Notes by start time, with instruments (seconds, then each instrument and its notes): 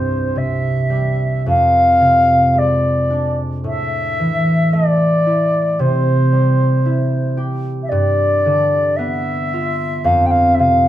Already playing: harp C2 G2, flute C5
0.36 harp C3, flute E5
0.90 harp G3
1.46 harp F2, flute F5
2.00 harp C3
2.54 harp G#3
2.58 flute D5
3.10 harp D4
3.64 harp A2, flute E5
4.20 harp E3
4.73 harp A3, flute D5
5.26 harp E4
5.79 harp C3, flute C5
6.32 harp G3
6.86 harp E4
7.37 harp G4
7.83 flute E5
7.89 harp G2, flute D5
8.46 harp D3
8.96 harp B3, flute E5
9.54 harp F4
10.04 harp F2, flute F5
10.26 flute G5
10.31 flute F5
10.54 flute E5
10.59 harp C3, flute F5